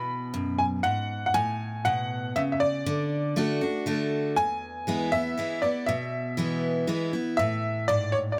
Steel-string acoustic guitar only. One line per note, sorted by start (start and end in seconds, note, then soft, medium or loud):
0.00 0.79 B2 medium
0.34 0.82 F#2 medium
0.84 1.32 G#2 medium
1.34 2.30 A2 medium
1.85 2.33 B2 medium
2.36 2.84 C#3 medium
2.86 3.35 D3 loud
3.36 3.60 D3 medium
3.36 3.61 A3 medium
3.36 3.61 D4 loud
3.36 3.60 F#4 medium
3.61 3.86 D4 soft
3.61 3.86 F#4 medium
3.86 4.34 D3 medium
3.86 4.35 A3 medium
3.86 4.35 D4 medium
3.86 4.35 F#4 medium
4.37 5.33 E2 medium
4.87 5.11 E3 medium
4.87 5.12 G#3 medium
4.87 5.12 B3 medium
4.87 5.12 E4 medium
5.13 5.38 B3 soft
5.13 5.37 E4 medium
5.38 5.62 E3 medium
5.38 5.62 G#3 medium
5.38 5.62 B3 medium
5.38 5.61 E4 medium
5.62 5.88 B3 soft
5.62 5.87 E4 medium
5.89 6.84 B2 medium
6.37 6.86 E3 medium
6.37 6.86 G#3 medium
6.37 6.86 B3 medium
6.37 6.87 E4 medium
6.87 7.12 E3 medium
6.87 7.12 G#3 medium
6.87 7.13 B3 medium
6.87 7.12 E4 medium
7.13 7.38 B3 medium
7.13 7.38 E4 medium
7.39 8.35 A2 medium
7.89 8.37 G#2 medium